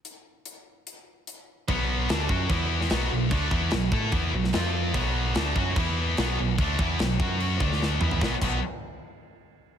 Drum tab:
CC |----------------|x---x---x---x---|x---x---x---x---|x---x---x---x---|
HH |x---x---x---x---|----------------|----------------|----------------|
SD |----------------|----o------oo---|----o------oo---|----o-------o---|
T2 |----------------|----------------|----------------|----------------|
FT |----------------|----------------|----------------|----------------|
BD |----------------|o-----o-o-------|o-o---o-o-------|o-----o-o-------|

CC |x---x---x-------|--x-------------|
HH |----------------|----------------|
SD |----o------oo---|o---------------|
T2 |--------------o-|----------------|
FT |---------------o|----------------|
BD |o-o---o---o-----|o-o-------------|